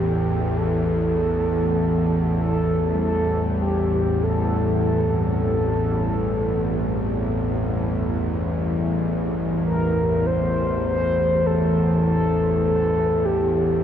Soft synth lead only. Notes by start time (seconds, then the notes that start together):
Already playing: G4
0.58 A4
2.41 A4
3.00 A4
3.62 G4
4.23 A4
4.82 A4
9.65 A#4
10.26 C5
10.86 C5
11.46 A4
12.05 A4
12.64 A4
13.25 G4